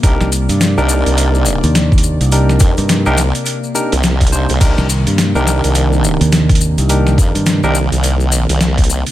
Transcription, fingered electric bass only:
X:1
M:4/4
L:1/16
Q:"Swing 16ths" 1/4=105
K:Cm
V:1 name="Fingered electric bass" clef=bass
z C,,2 G,,2 z6 E,,4 C,,- | C,,2 z G,,2 z8 z3 | z C,,2 G,,2 z6 E,,4 C,,- | C,,2 z G,,2 z8 z3 |]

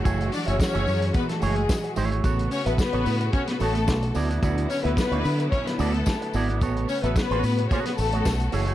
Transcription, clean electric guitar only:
X:1
M:4/4
L:1/16
Q:1/4=110
K:A
V:1 name="Clean electric guitar"
[A,EGc]2 z [A,EGe] z [A,EGc] z4 [A,EGc] z3 [A,EGc] [A,EGc] | [B,FAc]2 z [B,FAe] z [B,FAc] z4 [B,FAc] z3 [B,EFd] [B,EFd] | [B,EFd]2 z [B,EFe] z [B,EFd] z4 [B,EFd] z3 [B,EFd] [B,EFd] | [B,FAc]2 z [B,FAe] z [B,FAc] z2 [B,FAc] z2 [B,FAc] z2 [A,EGc] [A,EGc] |]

